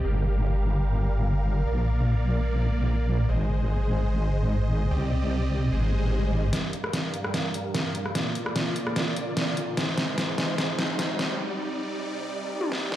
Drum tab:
HH |----------------|----------------|----------------|----------------|
SD |----------------|----------------|----------------|----------------|
T1 |----------------|----------------|----------------|----------------|

HH |x-x-x-x-x-x-x-x-|x-x-x-x-x-x-x-x-|x-x-x-x-x-x-x-x-|----------------|
SD |o--ro--ro---o--r|o--ro--ro---o---|o-o-o-o-o-o-o-o-|-------------o-o|
T1 |----------------|----------------|----------------|------------o---|